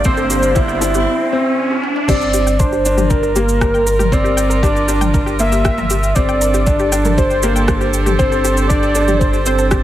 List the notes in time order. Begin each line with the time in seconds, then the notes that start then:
Already playing: D4, riser
0.04 G1 D3 C4 C5 G5, kick, shaker
0.17 A4, shaker
0.30 G3 G4, shaker
0.43 shaker
0.53 C4 E4 G4, kick, shaker
0.68 G5, shaker
0.81 E4 A4, shaker
0.94 E4 G4, shaker
1.33 C4
1.71 high tom
1.83 mid tom
1.96 mid tom
2.08 G1 C4 G4 D5, kick, crash, shaker
2.21 shaker
2.34 G4, shaker
2.47 G5, shaker
2.59 D4 A#4 C5, kick, shaker
2.72 G4, shaker
2.81 F4 A#4
2.85 D4, shaker
2.98 G4, mid tom, shaker
3.09 A#4 G5, kick, shaker
3.23 A#4, shaker
3.36 A#3 G4, shaker
3.49 shaker
3.61 G4, kick, cross-stick, shaker
3.74 G5, shaker
3.87 A#4, shaker
3.99 G4, mid tom, shaker
4.12 C4 D5, kick, shaker
4.24 G4, shaker
4.37 G5, shaker
4.50 A#4, shaker
4.63 D4 G4 D5, kick, shaker
4.76 shaker
4.88 D4 G4, shaker
5.01 G5, mid tom, shaker
5.14 A#4, kick, shaker
5.26 G4, shaker
5.39 A#3 E5, shaker
5.52 G4, shaker
5.65 G5, kick, cross-stick, shaker
5.78 A#4, mid tom, shaker
5.90 G4, shaker
6.03 shaker
6.15 G1 C4 G4 A4 D5, kick, shaker
6.25 D4 G5, shaker
6.41 A#4, shaker
6.54 G4, shaker
6.66 D4, kick, shaker
6.79 G4, shaker
6.92 D4 G5, shaker
7.05 A#4 C5, mid tom, shaker
7.18 G4 C5, kick, shaker
7.30 shaker
7.43 A#3 G4, shaker
7.56 G5, shaker
7.68 A#4, kick, cross-stick, shaker
7.81 G4, shaker
7.93 shaker
8.06 G4, mid tom, shaker
8.18 G1 C4 C5 G5, kick, shaker
8.32 A4, shaker
8.45 G4, shaker
8.57 shaker
8.68 D4 G4 D5, kick, shaker
8.83 G5, shaker
8.95 D4 A4, shaker
9.08 G4, mid tom, shaker
9.18 C5, kick, shaker
9.33 G4, shaker
9.46 C4 C5, shaker
9.58 A4, shaker
9.71 G4, kick, cross-stick, shaker